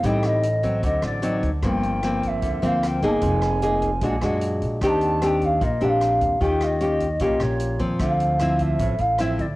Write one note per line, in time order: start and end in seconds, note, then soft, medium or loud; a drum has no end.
0.03 0.79 A1 medium
0.03 0.82 A2 medium
0.03 0.44 G3 medium
0.03 0.44 C4 soft
0.03 0.45 D#4 medium
0.03 0.27 G5 medium
0.03 kick medium
0.03 closed hi-hat soft
0.23 0.84 D#5 medium
0.23 cross-stick medium
0.23 closed hi-hat soft
0.43 closed hi-hat soft
0.63 1.21 F#3 medium
0.63 1.21 C4 medium
0.63 kick soft
0.63 closed hi-hat soft
0.83 1.02 D2 medium
0.83 1.62 D3 medium
0.83 1.03 D#5 medium
0.83 kick medium
0.83 closed hi-hat soft
1.02 1.41 A1 medium
1.02 1.42 D5 medium
1.02 cross-stick medium
1.02 closed hi-hat soft
1.22 1.49 F#3 medium
1.22 1.49 C4 medium
1.22 1.49 D#4 medium
1.22 closed hi-hat soft
1.43 1.62 D2 medium
1.43 kick soft
1.43 closed hi-hat soft
1.62 2.39 G1 medium
1.62 2.41 G2 medium
1.62 2.01 F3 medium
1.62 2.01 A#3 medium
1.62 2.01 C4 medium
1.62 kick medium
1.62 cross-stick medium
1.62 closed hi-hat soft
1.67 2.29 G5 medium
1.83 closed hi-hat soft
2.03 2.60 F3 medium
2.03 2.60 A#3 medium
2.03 2.61 C4 medium
2.03 cross-stick soft
2.03 closed hi-hat soft
2.23 kick soft
2.23 closed hi-hat soft
2.27 2.68 E5 medium
2.42 2.61 D2 medium
2.42 3.21 D3 soft
2.42 kick medium
2.42 closed hi-hat soft
2.62 3.00 D2 medium
2.62 3.00 F3 medium
2.62 3.00 A#3 medium
2.62 3.00 C4 medium
2.62 closed hi-hat soft
2.66 2.88 F5 medium
2.83 3.08 G5 medium
2.83 cross-stick medium
2.83 closed hi-hat soft
3.02 3.21 G1 medium
3.02 3.59 A#3 medium
3.02 3.60 D#4 medium
3.02 3.60 G#4 medium
3.02 kick soft
3.02 closed hi-hat soft
3.06 3.12 A5 medium
3.11 4.24 G#5 medium
3.21 3.98 F1 medium
3.21 4.00 F3 medium
3.21 kick medium
3.21 closed hi-hat soft
3.42 cross-stick medium
3.42 closed hi-hat soft
3.62 3.90 A#3 medium
3.62 3.90 D#4 medium
3.62 3.90 G#4 medium
3.62 closed hi-hat soft
3.82 kick soft
3.82 closed hi-hat soft
4.01 4.20 A#1 medium
4.01 4.81 A#2 soft
4.01 4.14 G#3 medium
4.01 4.15 D4 soft
4.01 4.15 F#4 medium
4.01 kick medium
4.01 closed hi-hat soft
4.21 4.59 F#2 medium
4.21 4.79 G#3 medium
4.21 4.79 D4 soft
4.21 4.80 F#4 medium
4.21 cross-stick medium
4.21 closed hi-hat soft
4.41 closed hi-hat soft
4.62 4.81 A#1 medium
4.62 kick soft
4.62 closed hi-hat soft
4.81 5.57 D#2 loud
4.81 5.60 D#3 medium
4.81 5.19 C4 soft
4.81 5.19 D4 medium
4.81 5.19 G4 medium
4.81 kick medium
4.81 cross-stick medium
4.81 closed hi-hat soft
4.86 5.28 A5 loud
4.86 4.90 A#5 medium
5.01 closed hi-hat soft
5.22 5.61 C4 medium
5.22 5.62 D4 medium
5.22 5.62 G4 medium
5.22 cross-stick medium
5.22 closed hi-hat soft
5.27 5.46 G5 medium
5.41 5.65 F5 medium
5.41 kick soft
5.41 closed hi-hat soft
5.61 5.80 A#1 medium
5.61 6.39 A#2 medium
5.61 5.86 D#5 medium
5.61 kick medium
5.61 closed hi-hat soft
5.81 6.19 A#1 medium
5.81 6.39 C4 soft
5.81 6.40 D4 medium
5.81 6.40 G4 medium
5.81 5.90 F#5 medium
5.81 closed hi-hat soft
5.89 6.42 F5 medium
6.01 cross-stick medium
6.01 closed hi-hat soft
6.21 6.40 D#2 medium
6.21 kick soft
6.21 closed hi-hat soft
6.40 7.17 D#2 loud
6.40 7.19 D#3 medium
6.40 6.78 C#4 soft
6.40 6.78 F4 medium
6.40 6.78 G4 medium
6.40 6.47 G#5 medium
6.40 kick medium
6.40 closed hi-hat soft
6.46 6.65 G5 medium
6.61 7.22 D#5 medium
6.61 cross-stick medium
6.61 closed hi-hat soft
6.80 7.07 C#4 medium
6.80 7.07 F4 medium
6.80 7.07 G4 medium
6.80 closed hi-hat soft
7.00 kick soft
7.00 closed hi-hat soft
7.19 7.39 A#1 medium
7.19 7.99 A#2 medium
7.19 7.77 C#4 medium
7.19 7.78 F4 medium
7.19 7.78 G4 medium
7.19 7.43 D#5 medium
7.19 kick medium
7.19 closed hi-hat soft
7.40 7.78 A#1 medium
7.40 7.81 C#5 medium
7.40 cross-stick medium
7.40 closed hi-hat soft
7.59 closed hi-hat soft
7.79 7.99 D#2 medium
7.79 8.37 F3 medium
7.79 8.37 C4 medium
7.79 kick soft
7.79 closed hi-hat soft
7.99 8.76 D2 loud
7.99 8.78 D3 medium
7.99 8.63 F5 medium
7.99 kick medium
7.99 cross-stick medium
7.99 closed hi-hat soft
8.20 closed hi-hat soft
8.39 8.94 F3 medium
8.39 8.94 C4 medium
8.39 8.94 E4 medium
8.39 cross-stick soft
8.39 closed hi-hat soft
8.59 9.02 E5 medium
8.59 kick soft
8.59 closed hi-hat soft
8.79 8.98 A1 medium
8.79 9.56 A2 soft
8.79 kick medium
8.79 closed hi-hat soft
8.98 9.37 A1 medium
8.98 9.22 F5 medium
8.98 closed hi-hat soft
9.18 9.45 F3 medium
9.18 9.46 C4 soft
9.18 9.46 E4 medium
9.18 9.42 E5 medium
9.18 cross-stick medium
9.18 closed hi-hat soft
9.39 9.56 D2 medium
9.39 9.56 D5 medium
9.39 kick soft
9.39 closed hi-hat soft